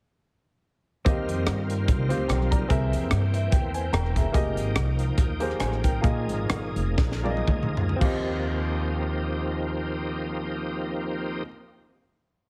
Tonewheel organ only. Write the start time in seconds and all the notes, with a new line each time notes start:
1.05 D#3 G3 A#3 C4 F4
2.70 E3 G5
4.34 F3 D#4
6.04 A#3 G#4
8.01 F3 A#3 C4 D#4 G4